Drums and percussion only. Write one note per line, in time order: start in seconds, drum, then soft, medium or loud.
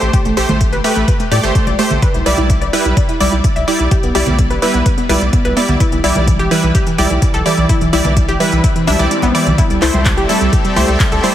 0.02 closed hi-hat soft
0.13 kick loud
0.13 closed hi-hat medium
0.25 closed hi-hat soft
0.37 open hi-hat loud
0.49 closed hi-hat soft
0.49 high conga medium
0.49 low conga medium
0.61 kick loud
0.61 closed hi-hat medium
0.73 closed hi-hat soft
0.84 open hi-hat medium
0.96 closed hi-hat soft
1.08 kick loud
1.08 closed hi-hat medium
1.20 closed hi-hat soft
1.32 open hi-hat loud
1.32 high conga medium
1.43 closed hi-hat soft
1.55 kick loud
1.55 closed hi-hat medium
1.67 closed hi-hat soft
1.67 high conga medium
1.79 open hi-hat medium
1.90 closed hi-hat soft
1.90 low conga medium
2.02 kick loud
2.02 closed hi-hat medium
2.14 closed hi-hat soft
2.26 open hi-hat loud
2.37 closed hi-hat soft
2.37 high conga medium
2.50 kick medium
2.50 closed hi-hat medium
2.62 closed hi-hat soft
2.73 open hi-hat medium
2.85 closed hi-hat soft
2.97 kick loud
2.97 closed hi-hat medium
3.09 closed hi-hat soft
3.20 open hi-hat loud
3.20 high conga medium
3.32 closed hi-hat soft
3.44 kick loud
3.44 closed hi-hat medium
3.56 closed hi-hat soft
3.68 open hi-hat medium
3.80 closed hi-hat soft
3.91 kick loud
3.91 closed hi-hat medium
4.03 closed hi-hat soft
4.15 open hi-hat medium
4.27 closed hi-hat soft
4.27 high conga medium
4.27 low conga medium
4.39 kick medium
4.39 closed hi-hat medium
4.50 closed hi-hat soft
4.62 open hi-hat medium
4.74 closed hi-hat soft
4.86 kick loud
4.86 closed hi-hat medium
4.98 closed hi-hat soft
5.09 open hi-hat loud
5.09 high conga medium
5.21 closed hi-hat soft
5.33 kick medium
5.33 closed hi-hat medium
5.45 closed hi-hat soft
5.45 high conga medium
5.57 open hi-hat medium
5.69 closed hi-hat soft
5.69 low conga medium
5.80 kick loud
5.80 closed hi-hat medium
5.92 closed hi-hat soft
6.04 open hi-hat medium
6.15 closed hi-hat soft
6.15 high conga medium
6.28 kick medium
6.28 closed hi-hat medium
6.39 closed hi-hat soft
6.51 open hi-hat medium
6.63 closed hi-hat soft
6.75 kick loud
6.75 closed hi-hat medium
6.87 closed hi-hat soft
6.98 open hi-hat loud
6.98 high conga medium
7.10 closed hi-hat soft
7.22 kick medium
7.22 closed hi-hat medium
7.34 closed hi-hat soft
7.46 open hi-hat medium
7.58 closed hi-hat soft
7.69 kick loud
7.69 closed hi-hat medium
7.81 closed hi-hat soft
7.93 open hi-hat medium
8.04 closed hi-hat soft
8.04 high conga medium
8.04 low conga medium
8.17 kick loud
8.17 closed hi-hat medium
8.29 closed hi-hat soft
8.40 open hi-hat medium
8.52 closed hi-hat soft
8.64 kick loud
8.64 closed hi-hat medium
8.76 closed hi-hat soft
8.87 open hi-hat loud
8.87 high conga medium
8.99 closed hi-hat soft
8.99 high conga medium
9.11 closed hi-hat medium
9.22 closed hi-hat soft
9.22 high conga medium
9.35 open hi-hat medium
9.47 closed hi-hat soft
9.47 low conga medium
9.58 kick loud
9.58 closed hi-hat medium
9.70 closed hi-hat soft
9.82 clap medium
9.82 open hi-hat loud
9.94 closed hi-hat soft
9.94 high conga medium
10.05 kick loud
10.05 clap loud
10.05 closed hi-hat medium
10.17 closed hi-hat soft
10.29 open hi-hat medium
10.41 closed hi-hat soft
10.53 kick loud
10.53 closed hi-hat medium
10.65 closed hi-hat soft
10.76 open hi-hat loud
10.76 high conga medium
10.88 closed hi-hat soft
11.00 kick loud
11.00 clap loud
11.00 closed hi-hat medium
11.12 closed hi-hat soft
11.24 open hi-hat medium